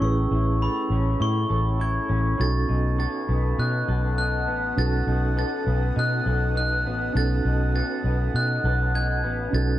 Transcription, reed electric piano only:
0.00 C#4 E4 G#4
0.04 B4
2.37 C#4 D#4 F#4
2.42 A4
4.76 C#4 D#4 F#4
4.81 A4
7.13 C#4 D#4 F#4
7.18 A4
9.50 C#4 D#4 F#4
9.56 A4

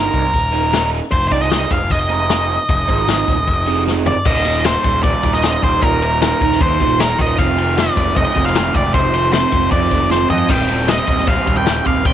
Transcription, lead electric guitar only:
Already playing: A#4
1.11 C5
1.28 C5 D5
1.42 D#5
1.71 F5
1.91 D#5
4.07 D5
4.26 D#5
4.66 C5
5.03 D5
5.34 D#5
5.63 C5
5.82 A#4
6.22 A#4
6.61 C5
7.00 A#4
7.18 D#5
7.38 F5
7.78 D5
8.16 D#5
8.45 F5
8.74 D5
8.94 C5
9.33 C5
9.71 D5
10.11 C5
10.30 D#5
10.50 G5
10.90 D#5
11.28 F5
11.57 G5
11.87 F5
12.06 G5

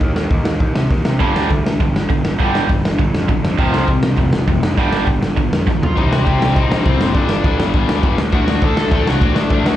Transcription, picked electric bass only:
0.01 D#2
0.14 D#2
0.31 D#2
0.44 D#2
0.60 D#2
0.74 C3
0.91 D#2
1.06 C3
1.21 G1
1.35 D2
1.51 D2
1.65 D2
1.80 G1
1.95 G1
2.10 G1
2.25 G1
2.40 G1
2.55 G1
2.70 G1
2.85 G1
2.99 G1
3.14 F2
3.30 G1
3.44 F2
3.58 F1
3.74 C2
3.88 C2
4.04 C2
4.18 F1
4.33 F1
4.48 F1
4.63 F1
4.78 G1
4.92 G1
5.08 G1
5.23 G1
5.38 G1
5.52 F2
5.68 G1
5.82 B1
5.97 C2
6.12 C2
6.27 C2
6.41 C2
6.56 C2
6.70 A#1
6.86 C2
7.00 F#1
7.15 G1
7.30 G1
7.44 D2
7.58 G1
7.74 G1
7.88 D2
8.03 G1
8.18 D2
8.32 D2
8.46 D2
8.62 D2
8.76 D2
8.91 D2
9.05 C2
9.21 D2
9.35 D2
9.51 D2
9.64 D2

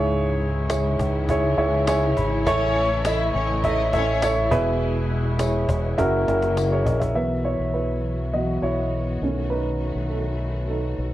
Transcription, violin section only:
2.46 C#4 C#5
3.04 E4 E5
3.34 C#4 C#5
3.63 D#4 D#5
3.94 C#4 C#5

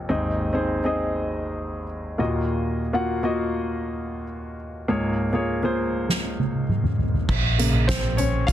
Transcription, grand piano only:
Already playing: C4 F4 A#4 C#5 D#5
0.09 G#1 D#2 C4 D#4 G#4 D#5
0.53 C4 D#4 G#4 C5
0.84 C4 D#4 G#4 D#5
2.18 D#2 A#2 A#3 F4 F#4 D#5
2.93 A#3 F4 F#4 F#5
3.23 A#3 F4 F#4 D#5
4.88 C#2 G#2 A#3 F4 G#4 C#5
5.33 A#3 F4 G#4 C#5
5.63 A#3 F4 G#4 C5
7.58 C#3 A#3
7.88 C4 C5
8.17 C#4 C#5
8.47 F4 F5

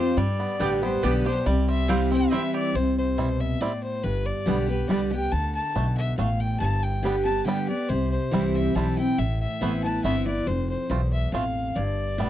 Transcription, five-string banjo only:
Already playing: C4 F4 G4
0.17 G3
0.40 B3
0.60 G3
0.83 B3
1.04 D4
1.26 G4
1.46 G3
1.69 C4
1.89 G3
2.11 C4
2.32 E4
2.54 G4
3.18 G3 C4 E4
3.62 G3 C4 E4
4.48 G3 B3 D4
4.90 G3 B3 D4
5.76 A3 D4
6.19 A3 D4
7.05 G3 B3 D4
7.48 G3 B3 D4
8.33 G3 C4 E4
8.76 G3 C4 E4
9.62 A3 B3 E4
10.05 A3 B3 E4
10.91 A3 C4 F4
11.34 A3 C4 F4
12.20 G3 B3 D4

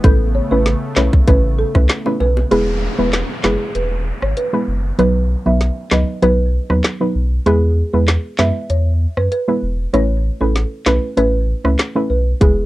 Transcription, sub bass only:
0.04 A1
0.51 A1
0.97 B1
1.28 A1
1.75 C#2
2.20 B1
2.51 E1
2.99 E1
3.44 F#1
3.75 E1
4.22 G#1
4.68 F#1
4.99 B1
5.46 B1
5.92 C#2
6.23 B1
6.70 D#2
7.15 B1
7.46 E2
7.94 E2
8.39 F#2
8.70 E2
9.17 F#2
9.63 E1
9.94 A1
10.41 A1
10.86 B1
11.17 A1
11.65 C#2
12.10 B1
12.41 E1

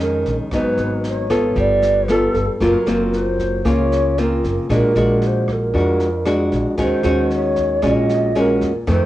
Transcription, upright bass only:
Already playing: F2
0.26 A#1
0.51 G#1
0.78 G#1
1.55 G1
2.34 G1
2.60 F#1
2.86 F#1
3.65 C#2
4.44 F#1
4.69 A#1
4.95 A#1
5.74 F2
6.52 A#1
6.78 D#2
7.04 D#2
7.83 A#1
8.61 E2
8.87 F2

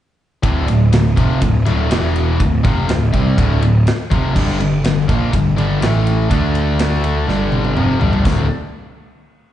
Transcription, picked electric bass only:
0.44 D1
0.68 D1
0.93 D1
1.17 F1
1.42 D1
1.66 D1
1.90 E1
2.40 D1
2.65 F1
2.88 D1
3.14 C2
3.38 D1
3.63 D1
4.12 F1
4.36 G1
4.61 G1
4.85 G1
5.09 A#1
5.34 G1
5.58 G1
5.82 A1
6.31 D2
7.28 G1
7.76 F1
8.00 G1
8.26 D1

